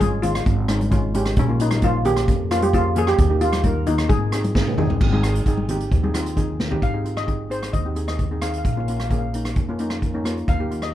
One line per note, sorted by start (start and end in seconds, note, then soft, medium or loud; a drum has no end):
0.00 0.42 G#1 loud
0.00 0.15 G#3 medium
0.00 0.15 C#4 medium
0.00 0.15 F4 medium
0.00 0.21 G#4 medium
0.00 kick medium
0.00 closed hi-hat medium
0.00 high conga medium
0.22 0.51 G#3 medium
0.22 0.51 C#4 medium
0.22 0.65 F4 medium
0.22 0.51 F4 medium
0.22 closed hi-hat medium
0.22 low conga medium
0.35 cross-stick medium
0.35 closed hi-hat medium
0.46 1.33 G#1 loud
0.46 kick loud
0.46 closed hi-hat medium
0.68 0.82 G#3 medium
0.68 0.83 C#4 medium
0.68 0.83 D#4 medium
0.68 cross-stick medium
0.68 closed hi-hat medium
0.81 closed hi-hat medium
0.81 high conga medium
0.91 1.05 G#3 medium
0.91 1.05 C#4 medium
0.91 1.06 F4 loud
0.91 kick medium
0.91 closed hi-hat medium
1.14 1.35 G#3 medium
1.14 1.35 C#4 medium
1.14 1.35 G4 loud
1.14 closed hi-hat medium
1.14 low conga medium
1.26 cross-stick medium
1.26 closed hi-hat medium
1.36 2.24 A#1 loud
1.36 1.61 C#4 medium
1.36 kick loud
1.36 closed hi-hat medium
1.48 1.55 A#3 medium
1.48 1.56 C#4 medium
1.48 1.56 F4 medium
1.60 1.73 A#3 medium
1.60 1.74 C#4 medium
1.60 1.84 D#4 medium
1.60 1.74 F4 medium
1.60 closed hi-hat medium
1.71 cross-stick medium
1.71 closed hi-hat medium
1.71 high conga medium
1.82 1.96 A#3 medium
1.82 1.97 C#4 medium
1.82 1.97 D#4 medium
1.82 2.06 F4 medium
1.82 kick medium
1.82 closed hi-hat medium
1.82 high conga medium
2.05 2.32 A#3 medium
2.05 2.33 C#4 medium
2.05 2.48 G4 loud
2.05 2.33 G#4 medium
2.05 closed hi-hat medium
2.05 low conga medium
2.17 cross-stick medium
2.17 closed hi-hat medium
2.28 3.15 F2 loud
2.28 kick loud
2.28 closed hi-hat medium
2.51 2.65 A#3 medium
2.51 2.65 C#4 medium
2.51 2.63 F4 medium
2.51 2.65 F4 medium
2.51 cross-stick medium
2.51 closed hi-hat medium
2.62 2.74 G4 medium
2.62 closed hi-hat medium
2.62 high conga medium
2.73 2.87 A#3 medium
2.73 2.87 C#4 medium
2.73 2.97 F4 loud
2.73 2.88 G#4 medium
2.73 kick medium
2.73 closed hi-hat medium
2.96 3.16 A#3 medium
2.96 3.17 C#4 medium
2.96 3.17 G#4 medium
2.96 3.09 G#4 medium
2.96 closed hi-hat medium
2.96 low conga medium
3.07 3.39 G4 loud
3.07 cross-stick medium
3.07 closed hi-hat medium
3.18 4.05 D#2 loud
3.18 kick loud
3.18 closed hi-hat medium
3.18 low conga medium
3.29 3.36 A#3 medium
3.29 3.37 D#4 medium
3.29 3.37 G4 medium
3.41 3.55 A#3 medium
3.41 3.55 D#4 medium
3.41 3.88 F4 medium
3.41 3.56 G4 medium
3.41 closed hi-hat medium
3.53 cross-stick medium
3.53 closed hi-hat medium
3.53 high conga medium
3.63 3.78 A#3 medium
3.63 3.78 D#4 medium
3.63 3.79 A#4 medium
3.63 kick medium
3.63 closed hi-hat medium
3.63 high conga medium
3.86 4.09 A#3 medium
3.86 4.08 D#4 medium
3.86 4.10 D#4 medium
3.86 4.10 F4 medium
3.86 closed hi-hat medium
3.86 low conga medium
3.98 cross-stick medium
3.98 closed hi-hat medium
4.09 4.96 G#1 medium
4.09 4.51 G#4 medium
4.09 kick loud
4.09 closed hi-hat medium
4.09 high conga medium
4.32 4.46 C4 medium
4.32 4.46 D#4 medium
4.32 4.47 G#4 medium
4.32 cross-stick medium
4.32 closed hi-hat medium
4.44 closed hi-hat medium
4.44 high conga medium
4.55 4.69 C4 medium
4.55 4.69 D#4 medium
4.55 4.69 G#4 medium
4.55 kick medium
4.55 snare medium
4.67 high tom medium
4.78 4.98 C4 medium
4.78 4.98 D#4 medium
4.78 4.99 G#4 medium
4.78 mid tom medium
4.78 low conga medium
4.90 floor tom medium
5.01 5.42 G#1 loud
5.01 kick loud
5.01 crash medium
5.01 low conga medium
5.12 5.19 C4 medium
5.12 5.19 D#4 medium
5.12 5.19 G#4 loud
5.12 high conga medium
5.23 5.37 C4 medium
5.23 5.38 D#4 medium
5.23 5.38 G#4 medium
5.23 cross-stick medium
5.23 closed hi-hat medium
5.35 closed hi-hat medium
5.46 5.87 G#1 medium
5.46 5.60 C4 medium
5.46 5.60 D#4 medium
5.46 5.61 G#4 medium
5.46 kick medium
5.46 closed hi-hat medium
5.57 high conga medium
5.69 5.90 C4 medium
5.69 5.90 D#4 medium
5.69 5.90 G4 medium
5.69 closed hi-hat medium
5.69 low conga medium
5.80 closed hi-hat medium
5.91 6.79 D#2 medium
5.91 kick loud
5.91 closed hi-hat medium
6.03 6.10 C4 medium
6.03 6.10 D#4 medium
6.03 6.10 G#4 medium
6.03 high conga medium
6.14 6.28 C4 medium
6.14 6.28 D#4 medium
6.14 6.29 F4 loud
6.14 cross-stick medium
6.14 closed hi-hat medium
6.26 closed hi-hat medium
6.36 6.57 C4 medium
6.36 6.57 D#4 medium
6.36 6.57 G#4 medium
6.36 kick medium
6.36 closed hi-hat medium
6.60 snare medium
6.60 low conga medium
6.70 6.82 C4 medium
6.70 6.82 D#4 medium
6.70 6.83 G4 medium
6.70 floor tom medium
6.82 7.70 G#1 medium
6.82 7.18 F5 medium
6.82 kick medium
6.82 closed hi-hat soft
6.94 7.00 C4 medium
6.94 7.01 D#4 medium
6.94 7.01 G#4 medium
7.04 7.19 C4 medium
7.04 7.19 D#4 soft
7.04 7.19 F4 medium
7.04 closed hi-hat medium
7.17 7.52 D#5 medium
7.17 cross-stick medium
7.17 closed hi-hat soft
7.26 7.41 C4 medium
7.26 7.41 D#4 medium
7.26 7.41 G#4 medium
7.26 kick medium
7.26 closed hi-hat soft
7.50 7.71 C4 soft
7.50 7.71 D#4 soft
7.50 7.72 G#4 medium
7.50 7.61 C5 medium
7.50 closed hi-hat medium
7.63 cross-stick medium
7.63 closed hi-hat medium
7.73 8.61 D#2 medium
7.73 8.07 D#5 medium
7.73 kick medium
7.73 closed hi-hat soft
7.85 7.92 C4 medium
7.85 7.92 D#4 soft
7.85 7.92 G4 medium
7.95 8.16 C4 medium
7.95 8.17 D#4 medium
7.95 8.17 G#4 medium
7.95 closed hi-hat medium
8.08 8.43 D#5 medium
8.08 cross-stick medium
8.08 closed hi-hat medium
8.19 kick medium
8.19 closed hi-hat medium
8.31 8.38 C4 medium
8.31 8.38 D#4 medium
8.31 8.38 G#4 medium
8.42 8.63 C4 medium
8.42 8.63 D#4 medium
8.42 8.63 G#4 medium
8.42 8.49 F5 medium
8.42 cross-stick medium
8.42 closed hi-hat medium
8.50 8.57 F5 soft
8.50 closed hi-hat medium
8.58 8.64 F5 medium
8.65 9.52 A#1 medium
8.65 8.71 F5 medium
8.65 kick medium
8.65 closed hi-hat medium
8.73 8.83 A#3 medium
8.73 8.79 F5 medium
8.77 8.84 C#4 medium
8.77 8.84 F4 medium
8.77 8.87 F5 soft
8.88 9.02 A#3 medium
8.88 9.02 C#4 soft
8.88 9.03 F4 medium
8.88 8.95 F5 soft
8.88 closed hi-hat medium
8.97 9.03 F5 soft
8.97 cross-stick medium
8.97 closed hi-hat medium
9.04 9.08 F5 soft
9.09 9.25 A#3 medium
9.09 9.25 C#4 medium
9.09 9.25 G#4 medium
9.09 9.17 F5 soft
9.09 kick medium
9.09 closed hi-hat medium
9.19 9.25 F5 medium
9.34 9.54 A#3 medium
9.34 9.54 C#4 soft
9.34 9.55 D#4 medium
9.34 closed hi-hat medium
9.45 cross-stick medium
9.45 closed hi-hat medium
9.56 10.44 F2 medium
9.56 kick medium
9.56 closed hi-hat soft
9.68 9.75 A#3 medium
9.68 9.75 C#4 medium
9.68 9.76 F4 medium
9.79 10.00 A#3 medium
9.79 10.00 C#4 medium
9.79 10.01 D#4 medium
9.79 closed hi-hat medium
9.90 cross-stick medium
9.90 closed hi-hat medium
10.02 kick medium
10.02 closed hi-hat medium
10.14 10.21 A#3 medium
10.14 10.21 C#4 medium
10.14 10.21 D#4 medium
10.24 10.45 A#3 medium
10.24 10.46 C#4 medium
10.24 10.46 F4 medium
10.24 cross-stick medium
10.24 closed hi-hat medium
10.37 closed hi-hat soft
10.48 10.94 D#2 medium
10.48 10.84 F5 medium
10.48 kick medium
10.48 closed hi-hat soft
10.59 10.66 A#3 medium
10.59 10.66 D#4 medium
10.59 10.67 G4 medium
10.70 10.84 A#3 medium
10.70 10.85 D#4 soft
10.70 10.85 F4 medium
10.70 closed hi-hat medium
10.82 10.94 D#5 medium
10.82 cross-stick medium
10.82 closed hi-hat medium